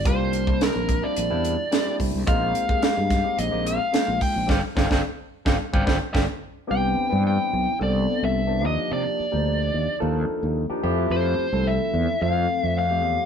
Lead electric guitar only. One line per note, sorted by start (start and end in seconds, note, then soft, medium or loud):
0.07 0.63 C5 medium
0.62 1.05 A#4 medium
1.04 1.96 D5 medium
2.28 2.82 F5 medium
2.84 3.40 F5 medium
3.39 3.64 D#5 medium
3.67 4.22 F5 medium
4.22 4.47 G5 medium
4.49 4.58 D5 medium
4.49 4.58 F5 medium
4.49 4.58 G5 medium
4.77 4.86 D5 medium
4.77 4.86 F5 medium
4.77 4.86 G5 medium
4.92 5.00 D5 medium
4.92 5.00 F5 medium
4.92 5.00 G5 medium
5.46 5.55 D5 medium
5.46 5.55 F5 medium
5.46 5.55 G5 medium
5.74 5.82 D5 medium
5.74 5.82 F5 medium
5.74 5.82 G5 medium
5.87 5.96 D5 medium
5.87 5.96 F5 medium
5.87 5.96 G5 medium
6.13 6.23 D5 medium
6.13 6.23 F5 medium
6.13 6.23 G5 medium
6.71 7.22 G5 medium
7.27 7.77 G5 medium
7.83 8.24 D5 medium
8.25 8.65 E5 medium
8.66 8.90 D#5 medium
8.93 9.98 D5 medium
11.12 11.68 C5 medium
11.67 12.22 E5 medium
12.22 12.63 F5 medium
12.63 12.77 E5 medium
12.79 13.26 F5 medium